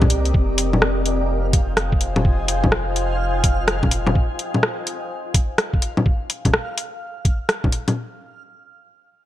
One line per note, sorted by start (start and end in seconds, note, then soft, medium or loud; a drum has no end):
0.00 0.32 C2 medium
0.00 0.30 C4 medium
0.00 0.30 G4 medium
0.00 0.30 A#4 medium
0.00 0.30 D5 medium
0.00 0.30 D#5 medium
0.00 kick loud
0.00 low bongo medium
0.10 open hi-hat medium
0.25 closed hi-hat soft
0.34 4.13 F1 medium
0.34 4.12 F4 medium
0.34 4.11 C5 medium
0.34 4.11 D#5 medium
0.34 6.07 F5 medium
0.34 4.11 G5 medium
0.34 4.11 G#5 medium
0.34 kick loud
0.58 closed hi-hat medium
0.73 low bongo medium
0.82 cross-stick loud
1.06 closed hi-hat medium
1.53 kick loud
1.53 closed hi-hat medium
1.77 cross-stick loud
1.77 closed hi-hat soft
1.92 kick loud
2.01 closed hi-hat medium
2.16 low bongo medium
2.25 kick loud
2.48 closed hi-hat medium
2.64 kick medium
2.64 low bongo soft
2.72 cross-stick loud
2.96 closed hi-hat medium
3.44 kick loud
3.44 closed hi-hat medium
3.68 cross-stick loud
3.68 closed hi-hat soft
3.83 kick loud
3.83 low bongo medium
3.91 closed hi-hat medium
4.07 low bongo medium
4.15 kick loud
4.39 closed hi-hat medium
4.54 low bongo soft
4.63 cross-stick loud
4.87 closed hi-hat medium
5.34 kick loud
5.34 closed hi-hat medium
5.58 cross-stick loud
5.58 closed hi-hat soft
5.73 kick loud
5.82 closed hi-hat medium
5.97 low bongo medium
6.06 kick loud
6.30 closed hi-hat soft
6.45 kick medium
6.45 closed hi-hat soft
6.45 low bongo soft
6.54 cross-stick loud
6.78 closed hi-hat soft
7.25 kick loud
7.25 closed hi-hat medium
7.49 cross-stick loud
7.49 closed hi-hat soft
7.64 kick loud
7.64 low bongo soft
7.72 closed hi-hat soft
7.88 closed hi-hat soft
7.88 low bongo medium